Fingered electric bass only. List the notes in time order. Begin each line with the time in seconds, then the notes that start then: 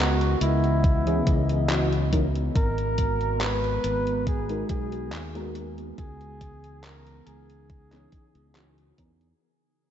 Already playing: C#2
0.41 C#2
1.27 C#2
2.56 G#1
3.84 G#1
4.70 B1
5.13 D#2
5.98 C#2
7.27 C#2
8.35 C#2
8.98 E2